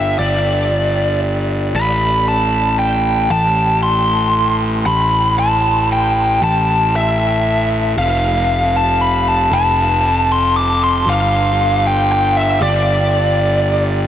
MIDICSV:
0, 0, Header, 1, 3, 480
1, 0, Start_track
1, 0, Tempo, 517241
1, 180, Time_signature, 3, 2, 24, 8
1, 13057, End_track
2, 0, Start_track
2, 0, Title_t, "Lead electric guitar"
2, 0, Program_c, 0, 29
2, 0, Note_on_c, 0, 76, 65
2, 171, Note_off_c, 0, 76, 0
2, 175, Note_on_c, 0, 74, 55
2, 1105, Note_off_c, 0, 74, 0
2, 1631, Note_on_c, 0, 83, 62
2, 2117, Note_on_c, 0, 81, 58
2, 2126, Note_off_c, 0, 83, 0
2, 2585, Note_off_c, 0, 81, 0
2, 2589, Note_on_c, 0, 79, 61
2, 3071, Note_off_c, 0, 79, 0
2, 3075, Note_on_c, 0, 81, 69
2, 3522, Note_off_c, 0, 81, 0
2, 3555, Note_on_c, 0, 84, 69
2, 4240, Note_off_c, 0, 84, 0
2, 4512, Note_on_c, 0, 83, 79
2, 4962, Note_off_c, 0, 83, 0
2, 5006, Note_on_c, 0, 81, 74
2, 5450, Note_off_c, 0, 81, 0
2, 5500, Note_on_c, 0, 79, 73
2, 5938, Note_off_c, 0, 79, 0
2, 5972, Note_on_c, 0, 81, 71
2, 6458, Note_on_c, 0, 76, 53
2, 6461, Note_off_c, 0, 81, 0
2, 7133, Note_off_c, 0, 76, 0
2, 7408, Note_on_c, 0, 77, 61
2, 8134, Note_on_c, 0, 81, 65
2, 8145, Note_off_c, 0, 77, 0
2, 8365, Note_on_c, 0, 83, 68
2, 8374, Note_off_c, 0, 81, 0
2, 8609, Note_off_c, 0, 83, 0
2, 8614, Note_on_c, 0, 81, 68
2, 8843, Note_off_c, 0, 81, 0
2, 8855, Note_on_c, 0, 81, 76
2, 9577, Note_on_c, 0, 84, 74
2, 9586, Note_off_c, 0, 81, 0
2, 9804, Note_off_c, 0, 84, 0
2, 9807, Note_on_c, 0, 86, 84
2, 10048, Note_off_c, 0, 86, 0
2, 10058, Note_on_c, 0, 84, 76
2, 10293, Note_off_c, 0, 84, 0
2, 10297, Note_on_c, 0, 77, 77
2, 11013, Note_on_c, 0, 79, 70
2, 11024, Note_off_c, 0, 77, 0
2, 11234, Note_off_c, 0, 79, 0
2, 11245, Note_on_c, 0, 79, 76
2, 11461, Note_off_c, 0, 79, 0
2, 11478, Note_on_c, 0, 76, 64
2, 11712, Note_off_c, 0, 76, 0
2, 11716, Note_on_c, 0, 74, 65
2, 12868, Note_off_c, 0, 74, 0
2, 13057, End_track
3, 0, Start_track
3, 0, Title_t, "Picked electric bass"
3, 0, Program_c, 1, 34
3, 0, Note_on_c, 1, 31, 52
3, 149, Note_off_c, 1, 31, 0
3, 178, Note_on_c, 1, 31, 54
3, 1598, Note_off_c, 1, 31, 0
3, 1622, Note_on_c, 1, 33, 51
3, 3042, Note_off_c, 1, 33, 0
3, 3065, Note_on_c, 1, 33, 55
3, 4485, Note_off_c, 1, 33, 0
3, 4515, Note_on_c, 1, 33, 57
3, 5930, Note_off_c, 1, 33, 0
3, 5958, Note_on_c, 1, 33, 59
3, 7371, Note_off_c, 1, 33, 0
3, 7400, Note_on_c, 1, 29, 58
3, 8809, Note_off_c, 1, 29, 0
3, 8831, Note_on_c, 1, 29, 62
3, 10242, Note_off_c, 1, 29, 0
3, 10272, Note_on_c, 1, 31, 62
3, 11678, Note_off_c, 1, 31, 0
3, 11702, Note_on_c, 1, 31, 62
3, 13057, Note_off_c, 1, 31, 0
3, 13057, End_track
0, 0, End_of_file